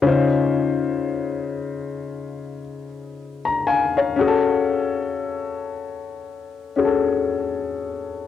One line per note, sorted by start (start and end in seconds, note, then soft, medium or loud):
0.02 4.13 C#3 medium
0.02 4.13 C#4 medium
0.02 4.14 D#4 medium
0.02 4.15 F4 medium
0.07 2.60 C5 medium
3.45 3.65 A#5 medium
3.67 3.95 F5 medium
3.67 3.95 G#5 medium
3.97 4.46 C#5 medium
3.97 4.46 F5 medium
4.16 6.71 C#4 medium
4.16 6.73 F#4 medium
4.21 4.27 G#4 medium
4.27 6.77 A4 medium
6.76 8.27 C#4 medium
6.76 8.27 F#4 soft
6.76 6.85 G#4 soft
6.85 8.27 A4 medium